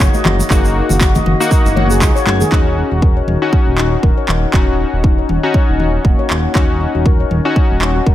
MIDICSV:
0, 0, Header, 1, 5, 480
1, 0, Start_track
1, 0, Key_signature, -6, "minor"
1, 0, Tempo, 504202
1, 479, Time_signature, 4, 2, 24, 8
1, 7757, End_track
2, 0, Start_track
2, 0, Title_t, "Handpan"
2, 0, Program_c, 0, 114
2, 0, Note_on_c, 0, 73, 89
2, 128, Note_off_c, 0, 73, 0
2, 135, Note_on_c, 0, 75, 78
2, 228, Note_off_c, 0, 75, 0
2, 237, Note_on_c, 0, 66, 81
2, 362, Note_off_c, 0, 66, 0
2, 480, Note_on_c, 0, 68, 83
2, 603, Note_off_c, 0, 68, 0
2, 960, Note_on_c, 0, 66, 104
2, 1083, Note_off_c, 0, 66, 0
2, 1096, Note_on_c, 0, 75, 80
2, 1189, Note_off_c, 0, 75, 0
2, 1199, Note_on_c, 0, 66, 79
2, 1323, Note_off_c, 0, 66, 0
2, 1438, Note_on_c, 0, 75, 87
2, 1562, Note_off_c, 0, 75, 0
2, 1573, Note_on_c, 0, 66, 78
2, 1667, Note_off_c, 0, 66, 0
2, 1676, Note_on_c, 0, 73, 78
2, 1751, Note_off_c, 0, 73, 0
2, 1812, Note_on_c, 0, 68, 102
2, 1903, Note_off_c, 0, 68, 0
2, 1915, Note_on_c, 0, 68, 88
2, 2040, Note_off_c, 0, 68, 0
2, 2052, Note_on_c, 0, 73, 108
2, 2152, Note_off_c, 0, 73, 0
2, 2154, Note_on_c, 0, 66, 81
2, 2280, Note_off_c, 0, 66, 0
2, 2291, Note_on_c, 0, 68, 105
2, 2386, Note_off_c, 0, 68, 0
2, 2396, Note_on_c, 0, 63, 78
2, 2471, Note_off_c, 0, 63, 0
2, 2638, Note_on_c, 0, 63, 73
2, 2769, Note_off_c, 0, 63, 0
2, 2775, Note_on_c, 0, 66, 74
2, 2831, Note_off_c, 0, 66, 0
2, 2878, Note_on_c, 0, 70, 74
2, 3009, Note_off_c, 0, 70, 0
2, 3015, Note_on_c, 0, 73, 72
2, 3108, Note_off_c, 0, 73, 0
2, 3359, Note_on_c, 0, 66, 78
2, 3482, Note_off_c, 0, 66, 0
2, 3599, Note_on_c, 0, 63, 72
2, 3729, Note_off_c, 0, 63, 0
2, 3735, Note_on_c, 0, 66, 72
2, 3791, Note_off_c, 0, 66, 0
2, 3838, Note_on_c, 0, 70, 80
2, 3969, Note_off_c, 0, 70, 0
2, 3975, Note_on_c, 0, 73, 76
2, 4068, Note_off_c, 0, 73, 0
2, 4076, Note_on_c, 0, 63, 73
2, 4201, Note_off_c, 0, 63, 0
2, 4315, Note_on_c, 0, 66, 80
2, 4441, Note_off_c, 0, 66, 0
2, 4795, Note_on_c, 0, 63, 98
2, 4920, Note_off_c, 0, 63, 0
2, 4935, Note_on_c, 0, 73, 73
2, 5028, Note_off_c, 0, 73, 0
2, 5038, Note_on_c, 0, 63, 73
2, 5162, Note_off_c, 0, 63, 0
2, 5277, Note_on_c, 0, 73, 79
2, 5401, Note_off_c, 0, 73, 0
2, 5415, Note_on_c, 0, 63, 75
2, 5508, Note_off_c, 0, 63, 0
2, 5517, Note_on_c, 0, 66, 71
2, 5648, Note_off_c, 0, 66, 0
2, 5758, Note_on_c, 0, 58, 81
2, 5832, Note_off_c, 0, 58, 0
2, 5894, Note_on_c, 0, 73, 76
2, 5988, Note_off_c, 0, 73, 0
2, 5998, Note_on_c, 0, 66, 76
2, 6073, Note_off_c, 0, 66, 0
2, 6237, Note_on_c, 0, 63, 80
2, 6312, Note_off_c, 0, 63, 0
2, 6478, Note_on_c, 0, 63, 73
2, 6609, Note_off_c, 0, 63, 0
2, 6615, Note_on_c, 0, 66, 75
2, 6671, Note_off_c, 0, 66, 0
2, 6719, Note_on_c, 0, 70, 81
2, 6849, Note_off_c, 0, 70, 0
2, 6856, Note_on_c, 0, 73, 74
2, 6948, Note_off_c, 0, 73, 0
2, 7197, Note_on_c, 0, 66, 79
2, 7322, Note_off_c, 0, 66, 0
2, 7437, Note_on_c, 0, 63, 72
2, 7568, Note_off_c, 0, 63, 0
2, 7571, Note_on_c, 0, 66, 73
2, 7629, Note_off_c, 0, 66, 0
2, 7676, Note_on_c, 0, 70, 84
2, 7757, Note_off_c, 0, 70, 0
2, 7757, End_track
3, 0, Start_track
3, 0, Title_t, "Synth keys"
3, 0, Program_c, 1, 88
3, 0, Note_on_c, 1, 58, 100
3, 0, Note_on_c, 1, 63, 93
3, 0, Note_on_c, 1, 66, 113
3, 454, Note_off_c, 1, 58, 0
3, 454, Note_off_c, 1, 66, 0
3, 455, Note_off_c, 1, 63, 0
3, 478, Note_on_c, 1, 63, 85
3, 478, Note_on_c, 1, 66, 104
3, 479, Note_on_c, 1, 58, 94
3, 1302, Note_off_c, 1, 63, 0
3, 1303, Note_off_c, 1, 58, 0
3, 1303, Note_off_c, 1, 66, 0
3, 1336, Note_on_c, 1, 58, 101
3, 1336, Note_on_c, 1, 63, 92
3, 1337, Note_on_c, 1, 66, 113
3, 2374, Note_off_c, 1, 58, 0
3, 2374, Note_off_c, 1, 63, 0
3, 2375, Note_off_c, 1, 66, 0
3, 2396, Note_on_c, 1, 61, 84
3, 2396, Note_on_c, 1, 63, 75
3, 2396, Note_on_c, 1, 66, 95
3, 3222, Note_off_c, 1, 61, 0
3, 3222, Note_off_c, 1, 63, 0
3, 3222, Note_off_c, 1, 66, 0
3, 3254, Note_on_c, 1, 61, 91
3, 3254, Note_on_c, 1, 63, 85
3, 3255, Note_on_c, 1, 66, 102
3, 4293, Note_off_c, 1, 61, 0
3, 4293, Note_off_c, 1, 63, 0
3, 4294, Note_off_c, 1, 66, 0
3, 4316, Note_on_c, 1, 61, 86
3, 4316, Note_on_c, 1, 63, 80
3, 4317, Note_on_c, 1, 66, 95
3, 5141, Note_off_c, 1, 63, 0
3, 5142, Note_off_c, 1, 61, 0
3, 5142, Note_off_c, 1, 66, 0
3, 5172, Note_on_c, 1, 61, 95
3, 5173, Note_on_c, 1, 63, 88
3, 5173, Note_on_c, 1, 66, 105
3, 6212, Note_off_c, 1, 61, 0
3, 6213, Note_off_c, 1, 63, 0
3, 6213, Note_off_c, 1, 66, 0
3, 6236, Note_on_c, 1, 61, 86
3, 6236, Note_on_c, 1, 63, 80
3, 6236, Note_on_c, 1, 66, 93
3, 7061, Note_off_c, 1, 66, 0
3, 7062, Note_off_c, 1, 61, 0
3, 7062, Note_off_c, 1, 63, 0
3, 7093, Note_on_c, 1, 63, 88
3, 7093, Note_on_c, 1, 66, 107
3, 7094, Note_on_c, 1, 61, 96
3, 7757, Note_off_c, 1, 61, 0
3, 7757, Note_off_c, 1, 63, 0
3, 7757, Note_off_c, 1, 66, 0
3, 7757, End_track
4, 0, Start_track
4, 0, Title_t, "Analog synth bass"
4, 0, Program_c, 2, 38
4, 0, Note_on_c, 2, 30, 88
4, 85, Note_off_c, 2, 30, 0
4, 237, Note_on_c, 2, 30, 104
4, 401, Note_off_c, 2, 30, 0
4, 480, Note_on_c, 2, 30, 102
4, 774, Note_off_c, 2, 30, 0
4, 856, Note_on_c, 2, 30, 87
4, 1137, Note_off_c, 2, 30, 0
4, 1199, Note_on_c, 2, 30, 96
4, 1284, Note_off_c, 2, 30, 0
4, 1575, Note_on_c, 2, 30, 102
4, 1920, Note_on_c, 2, 37, 99
4, 1935, Note_off_c, 2, 30, 0
4, 2005, Note_off_c, 2, 37, 0
4, 2157, Note_on_c, 2, 30, 103
4, 2321, Note_off_c, 2, 30, 0
4, 2399, Note_on_c, 2, 27, 98
4, 2694, Note_off_c, 2, 27, 0
4, 2773, Note_on_c, 2, 27, 84
4, 3056, Note_off_c, 2, 27, 0
4, 3115, Note_on_c, 2, 27, 93
4, 3202, Note_off_c, 2, 27, 0
4, 3491, Note_on_c, 2, 27, 92
4, 3774, Note_off_c, 2, 27, 0
4, 3836, Note_on_c, 2, 27, 82
4, 3923, Note_off_c, 2, 27, 0
4, 4078, Note_on_c, 2, 27, 99
4, 4241, Note_off_c, 2, 27, 0
4, 4317, Note_on_c, 2, 27, 95
4, 4612, Note_off_c, 2, 27, 0
4, 4696, Note_on_c, 2, 27, 82
4, 4977, Note_off_c, 2, 27, 0
4, 5039, Note_on_c, 2, 27, 90
4, 5124, Note_off_c, 2, 27, 0
4, 5416, Note_on_c, 2, 27, 92
4, 5697, Note_off_c, 2, 27, 0
4, 5756, Note_on_c, 2, 27, 82
4, 5843, Note_off_c, 2, 27, 0
4, 6000, Note_on_c, 2, 27, 104
4, 6162, Note_off_c, 2, 27, 0
4, 6238, Note_on_c, 2, 27, 97
4, 6533, Note_off_c, 2, 27, 0
4, 6616, Note_on_c, 2, 27, 84
4, 6897, Note_off_c, 2, 27, 0
4, 6961, Note_on_c, 2, 27, 92
4, 7046, Note_off_c, 2, 27, 0
4, 7338, Note_on_c, 2, 27, 96
4, 7618, Note_off_c, 2, 27, 0
4, 7677, Note_on_c, 2, 27, 84
4, 7757, Note_off_c, 2, 27, 0
4, 7757, End_track
5, 0, Start_track
5, 0, Title_t, "Drums"
5, 0, Note_on_c, 9, 36, 116
5, 0, Note_on_c, 9, 39, 98
5, 0, Note_on_c, 9, 62, 41
5, 4, Note_on_c, 9, 63, 64
5, 93, Note_off_c, 9, 62, 0
5, 95, Note_off_c, 9, 36, 0
5, 95, Note_off_c, 9, 39, 0
5, 99, Note_off_c, 9, 63, 0
5, 135, Note_on_c, 9, 82, 36
5, 138, Note_on_c, 9, 63, 93
5, 230, Note_off_c, 9, 82, 0
5, 233, Note_off_c, 9, 63, 0
5, 240, Note_on_c, 9, 64, 112
5, 243, Note_on_c, 9, 39, 90
5, 243, Note_on_c, 9, 47, 82
5, 335, Note_off_c, 9, 64, 0
5, 338, Note_off_c, 9, 39, 0
5, 338, Note_off_c, 9, 47, 0
5, 382, Note_on_c, 9, 82, 71
5, 383, Note_on_c, 9, 62, 57
5, 477, Note_off_c, 9, 82, 0
5, 478, Note_off_c, 9, 62, 0
5, 480, Note_on_c, 9, 36, 117
5, 481, Note_on_c, 9, 39, 89
5, 489, Note_on_c, 9, 82, 64
5, 575, Note_off_c, 9, 36, 0
5, 576, Note_off_c, 9, 39, 0
5, 584, Note_off_c, 9, 82, 0
5, 619, Note_on_c, 9, 82, 38
5, 714, Note_off_c, 9, 82, 0
5, 851, Note_on_c, 9, 62, 60
5, 857, Note_on_c, 9, 64, 86
5, 862, Note_on_c, 9, 82, 70
5, 946, Note_off_c, 9, 62, 0
5, 953, Note_off_c, 9, 64, 0
5, 957, Note_off_c, 9, 82, 0
5, 957, Note_on_c, 9, 82, 69
5, 960, Note_on_c, 9, 36, 122
5, 961, Note_on_c, 9, 39, 105
5, 1052, Note_off_c, 9, 82, 0
5, 1055, Note_off_c, 9, 36, 0
5, 1056, Note_off_c, 9, 39, 0
5, 1096, Note_on_c, 9, 82, 41
5, 1103, Note_on_c, 9, 64, 105
5, 1104, Note_on_c, 9, 63, 92
5, 1191, Note_off_c, 9, 82, 0
5, 1198, Note_off_c, 9, 64, 0
5, 1199, Note_off_c, 9, 63, 0
5, 1200, Note_on_c, 9, 62, 44
5, 1203, Note_on_c, 9, 47, 104
5, 1295, Note_off_c, 9, 62, 0
5, 1298, Note_off_c, 9, 47, 0
5, 1345, Note_on_c, 9, 82, 77
5, 1440, Note_off_c, 9, 82, 0
5, 1440, Note_on_c, 9, 36, 113
5, 1440, Note_on_c, 9, 82, 68
5, 1443, Note_on_c, 9, 63, 58
5, 1535, Note_off_c, 9, 36, 0
5, 1535, Note_off_c, 9, 82, 0
5, 1538, Note_off_c, 9, 63, 0
5, 1580, Note_on_c, 9, 82, 42
5, 1583, Note_on_c, 9, 62, 56
5, 1675, Note_off_c, 9, 82, 0
5, 1678, Note_off_c, 9, 62, 0
5, 1681, Note_on_c, 9, 47, 86
5, 1685, Note_on_c, 9, 63, 106
5, 1776, Note_off_c, 9, 47, 0
5, 1780, Note_off_c, 9, 63, 0
5, 1812, Note_on_c, 9, 82, 76
5, 1907, Note_off_c, 9, 82, 0
5, 1919, Note_on_c, 9, 62, 46
5, 1919, Note_on_c, 9, 82, 71
5, 1920, Note_on_c, 9, 36, 118
5, 1922, Note_on_c, 9, 39, 103
5, 2014, Note_off_c, 9, 82, 0
5, 2015, Note_off_c, 9, 36, 0
5, 2015, Note_off_c, 9, 62, 0
5, 2017, Note_off_c, 9, 39, 0
5, 2060, Note_on_c, 9, 82, 40
5, 2155, Note_off_c, 9, 82, 0
5, 2158, Note_on_c, 9, 63, 96
5, 2161, Note_on_c, 9, 39, 93
5, 2161, Note_on_c, 9, 48, 64
5, 2253, Note_off_c, 9, 63, 0
5, 2257, Note_off_c, 9, 39, 0
5, 2257, Note_off_c, 9, 48, 0
5, 2294, Note_on_c, 9, 82, 70
5, 2299, Note_on_c, 9, 47, 78
5, 2305, Note_on_c, 9, 62, 62
5, 2389, Note_off_c, 9, 82, 0
5, 2394, Note_off_c, 9, 47, 0
5, 2400, Note_off_c, 9, 62, 0
5, 2400, Note_on_c, 9, 36, 111
5, 2402, Note_on_c, 9, 39, 89
5, 2495, Note_off_c, 9, 36, 0
5, 2497, Note_off_c, 9, 39, 0
5, 2878, Note_on_c, 9, 36, 116
5, 2973, Note_off_c, 9, 36, 0
5, 3122, Note_on_c, 9, 47, 94
5, 3217, Note_off_c, 9, 47, 0
5, 3358, Note_on_c, 9, 36, 116
5, 3453, Note_off_c, 9, 36, 0
5, 3598, Note_on_c, 9, 39, 85
5, 3693, Note_off_c, 9, 39, 0
5, 3838, Note_on_c, 9, 36, 109
5, 3933, Note_off_c, 9, 36, 0
5, 4080, Note_on_c, 9, 39, 92
5, 4080, Note_on_c, 9, 47, 81
5, 4175, Note_off_c, 9, 39, 0
5, 4175, Note_off_c, 9, 47, 0
5, 4317, Note_on_c, 9, 36, 119
5, 4319, Note_on_c, 9, 39, 90
5, 4412, Note_off_c, 9, 36, 0
5, 4415, Note_off_c, 9, 39, 0
5, 4797, Note_on_c, 9, 36, 116
5, 4892, Note_off_c, 9, 36, 0
5, 5038, Note_on_c, 9, 47, 93
5, 5133, Note_off_c, 9, 47, 0
5, 5277, Note_on_c, 9, 36, 116
5, 5372, Note_off_c, 9, 36, 0
5, 5519, Note_on_c, 9, 47, 75
5, 5615, Note_off_c, 9, 47, 0
5, 5757, Note_on_c, 9, 36, 117
5, 5852, Note_off_c, 9, 36, 0
5, 6000, Note_on_c, 9, 39, 91
5, 6095, Note_off_c, 9, 39, 0
5, 6237, Note_on_c, 9, 36, 115
5, 6239, Note_on_c, 9, 39, 93
5, 6332, Note_off_c, 9, 36, 0
5, 6334, Note_off_c, 9, 39, 0
5, 6718, Note_on_c, 9, 36, 119
5, 6813, Note_off_c, 9, 36, 0
5, 6959, Note_on_c, 9, 47, 89
5, 7054, Note_off_c, 9, 47, 0
5, 7198, Note_on_c, 9, 36, 118
5, 7293, Note_off_c, 9, 36, 0
5, 7440, Note_on_c, 9, 39, 92
5, 7535, Note_off_c, 9, 39, 0
5, 7678, Note_on_c, 9, 36, 116
5, 7757, Note_off_c, 9, 36, 0
5, 7757, End_track
0, 0, End_of_file